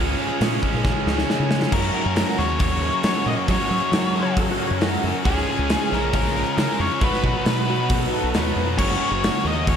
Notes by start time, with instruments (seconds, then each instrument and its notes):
Already playing: fingered electric bass C#2, distorted electric guitar C#3 F3, overdriven electric guitar C#3 G#3 C#4, tonewheel organ F4 G#4 C#5
0.00 distorted electric guitar G#3 C#4, overdriven electric guitar F4 G#4
0.19 distorted electric guitar F3 G#3 C#4
0.40 fingered electric bass A#2, distorted electric guitar C#3 F3 G#3 C#4, twelve-string acoustic guitar G#3 F4 G#4, snare, open hi-hat
0.62 distorted electric guitar C#3 F3 G#3 C#4, kick
0.74 fingered electric bass A#2
0.85 distorted electric guitar C#3 F3 G#3 C#4, twelve-string acoustic guitar G#3 C#4 F4 G#4, kick, snare
1.06 fingered electric bass C#2, distorted electric guitar C#3 F3 G#3 C#4, twelve-string acoustic guitar C#4 F4 G#4, snare
1.18 snare
1.28 distorted electric guitar C#3 F3 G#3 C#4, twelve-string acoustic guitar G#3 C#4 F4 G#4, snare
1.40 fingered electric bass C#3
1.50 distorted electric guitar F3 G#3 C#4, twelve-string acoustic guitar C#4 F4 G#4, snare
1.62 snare
1.72 overdriven electric guitar F#2 C#3 F#3 A#3 C#4 F#4, fingered electric bass F#2, distorted electric guitar F#2 C#3 F#3, tonewheel organ F#4 A#4 C#5, lead electric guitar A#4, twelve-string acoustic guitar A#4, kick, crash
1.94 overdriven electric guitar F#3 A#3 C#4 F#4, twelve-string acoustic guitar A#4
2.05 fingered electric bass F#2
2.16 overdriven electric guitar F#2 C#3 F#3 A#3 C#4 F#4, lead electric guitar A#4, twelve-string acoustic guitar A#4, snare, open hi-hat
2.38 fingered electric bass D#2, overdriven electric guitar F#2 C#3 F#3 A#3 C#4 F#4, lead electric guitar C#5, snare
2.60 overdriven electric guitar F#3 A#3 C#4 F#4, twelve-string acoustic guitar A#4, lead electric guitar C#5, kick, open hi-hat
2.82 overdriven electric guitar F#2 C#3 F#3 A#3 C#4 F#4, twelve-string acoustic guitar A#4
3.03 overdriven electric guitar F#2 C#3 F#3 A#3 C#4 F#4, twelve-string acoustic guitar F#2 C#3 A#4, fingered electric bass F#3, lead electric guitar C#5, snare, open hi-hat
3.26 fingered electric bass A#2, overdriven electric guitar F#3 A#3 C#4 F#4, twelve-string acoustic guitar A#4, lead electric guitar D#5
3.47 overdriven electric guitar F#2 C#3 F#3 A#3 C#4 F#4, distorted electric guitar F#2 C#3, fingered electric bass F#3, twelve-string acoustic guitar A#4, kick, open hi-hat
3.51 distorted electric guitar F#3, lead electric guitar C#5
3.69 fingered electric bass F#3, overdriven electric guitar F#3 A#3 C#4 F#4, twelve-string acoustic guitar A#4
3.91 overdriven electric guitar F#2 C#3 F#3 A#3 C#4 F#4, fingered electric bass F#3, twelve-string acoustic guitar A#4, snare, open hi-hat
4.13 overdriven electric guitar F#2 C#3 F#3 A#3 C#4 F#4
4.23 electric slide guitar C#5
4.36 overdriven electric guitar F#3 A#3 C#4 F#4, electric slide guitar A4, twelve-string acoustic guitar A#4, kick, open hi-hat
4.51 electric slide guitar F#4
4.57 overdriven electric guitar F#3 A#3 C#4 F#4, twelve-string acoustic guitar A#4
4.61 overdriven electric guitar F#2 C#3
4.67 fingered electric bass F#2, electric slide guitar C#5
4.79 twelve-string acoustic guitar F#2 C#3 A#4, overdriven electric guitar F#2 C#3 F#3 A#3 C#4, electric slide guitar A#4, snare, open hi-hat
4.84 overdriven electric guitar F#4
5.01 fingered electric bass F#2, overdriven electric guitar A#3 C#4 F#4, twelve-string acoustic guitar A#4
5.05 overdriven electric guitar F#3
5.24 fingered electric bass C#2, distorted electric guitar C#3 G#3 C#4, overdriven electric guitar C#3 F3 G#3 C#4 F4, tonewheel organ F4 G#4 C#5, twelve-string acoustic guitar G#4, lead electric guitar G#4, kick, open hi-hat
5.38 snare
5.45 overdriven electric guitar C#4 F4, twelve-string acoustic guitar G#4
5.50 overdriven electric guitar G#3
5.59 fingered electric bass C#2
5.69 overdriven electric guitar C#3 F3 G#3 C#4 F4, twelve-string acoustic guitar G#4, snare, open hi-hat
5.91 fingered electric bass A#1, overdriven electric guitar C#3 G#3 C#4 F4, lead electric guitar A#4, snare
6.12 overdriven electric guitar F3 G#3 C#4 F4, lead electric guitar A#4, kick, open hi-hat
6.34 overdriven electric guitar F3 G#3 C#4 F4, twelve-string acoustic guitar G#4
6.38 overdriven electric guitar C#3
6.56 twelve-string acoustic guitar C#3 G#4, fingered electric bass C#3, overdriven electric guitar C#3 F3 G#3 C#4 F4, lead electric guitar A#4, snare, open hi-hat
6.77 fingered electric bass F2, overdriven electric guitar G#3 C#4 F4, twelve-string acoustic guitar G#4, lead electric guitar C#5
7.00 fingered electric bass B1, overdriven electric guitar B2 F#3 B3 D#4 F#4, distorted electric guitar B2 F#3 B3, lead electric guitar B4, kick, open hi-hat
7.05 tonewheel organ D#4 F#4 B4
7.13 snare
7.23 fingered electric bass B2, overdriven electric guitar B3 D#4 F#4, kick
7.46 overdriven electric guitar B2 F#3 B3 D#4 F#4, fingered electric bass B2, snare, open hi-hat
7.67 overdriven electric guitar B2 F#3 B3 D#4 F#4, electric slide guitar F#4
7.89 overdriven electric guitar F#3 B3 D#4 F#4, kick, open hi-hat
8.12 overdriven electric guitar B2 F#3 B3 D#4 F#4, electric slide guitar A4
8.23 fingered electric bass B1
8.34 fingered electric bass D#2, twelve-string acoustic guitar B2, overdriven electric guitar B2 F#3 B3 D#4 F#4, electric slide guitar B4, snare, open hi-hat
8.56 fingered electric bass F2, overdriven electric guitar B3 D#4 F#4
8.78 fingered electric bass F#1, distorted electric guitar F#2 C#3 F#3, overdriven electric guitar F#2 C#3 F#3 A#3 C#4 F#4, tonewheel organ C#4 F#4 A#4, lead electric guitar C#5, kick, crash
8.91 snare
9.01 overdriven electric guitar F#3 A#3 C#4 F#4
9.11 fingered electric bass F#1
9.22 overdriven electric guitar F#2 C#3 F#3 A#3 C#4 F#4, snare, open hi-hat
9.45 fingered electric bass D#2, overdriven electric guitar F#2 C#3 F#3 A#3 C#4 F#4, lead electric guitar D#5
9.66 overdriven electric guitar F#3 A#3 C#4 F#4, lead electric guitar C#5, kick, open hi-hat